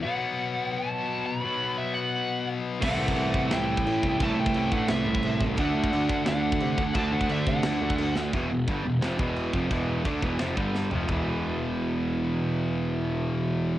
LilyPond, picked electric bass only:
\new Staff \with { instrumentName = "Picked electric bass" } { \clef bass \time 4/4 \key e \minor \tempo 4 = 174 r1 | r1 | c,8 c,8 c,8 c,8 c,4 a,8 c,8 | c,8 c,8 c,8 a,8 c,8 c,8 c,8 c,8 |
d,8 d,8 d,8 d,8 d,4 c8 d,8 | d,8 d,8 d,8 c8 d,8 d,8 d,8 d,8 | e,,8 e,,8 g,,8 e,,8 f,,8 e,,4 f,,8 | e,,4 d,8 e,,8 f,,8 g,,4 f,,8 |
e,,1~ | e,,1 | }